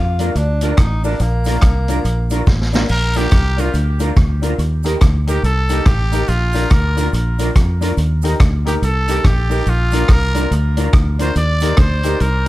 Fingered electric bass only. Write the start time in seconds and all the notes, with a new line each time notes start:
Already playing: F2
0.35 D2
0.78 A1
1.20 A#1
1.63 C2
2.05 A#1
2.47 A1
2.90 A#1
3.32 C2
3.74 D2
4.16 D2
4.58 D#2
5.02 D2
5.43 C2
5.86 A1
6.29 A#1
6.71 D2
7.13 A#1
7.56 F2
7.97 D#2
8.40 D2
8.82 C2
9.24 A#1
9.66 A#1
10.09 C2
10.51 D2
10.93 D2
11.36 D#2
11.78 D2
12.21 C2